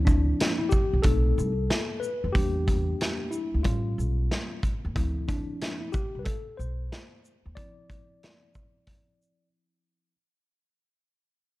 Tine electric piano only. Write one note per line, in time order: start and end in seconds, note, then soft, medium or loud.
0.00 1.00 F3 soft
0.00 1.01 C4 soft
0.00 0.57 E4 medium
0.05 0.56 D4 medium
0.58 0.71 E4 medium
0.69 1.04 G4 medium
1.02 1.51 A3 soft
1.02 1.51 C4 soft
1.02 1.52 D#4 medium
1.02 2.04 A4 loud
2.00 2.35 B4 medium
2.33 3.61 G3 soft
2.33 3.61 A#3 soft
2.33 3.62 D4 medium
2.33 3.35 G4 medium
3.31 3.65 E4 medium
3.63 4.59 G3 medium
3.63 4.59 C#4 soft
3.63 3.65 F4 medium
3.63 4.59 F4 medium
4.95 5.89 F3 soft
4.95 5.89 C4 soft
4.95 5.80 E4 medium
5.28 5.78 D4 medium
5.81 5.93 E4 medium
5.92 6.21 G4 medium
6.19 6.25 B4 medium
6.25 6.56 A4 medium
6.57 7.19 C5 medium
7.55 10.13 F3 soft
7.55 10.14 C4 soft
7.55 10.14 E4 soft
7.55 9.48 D5 medium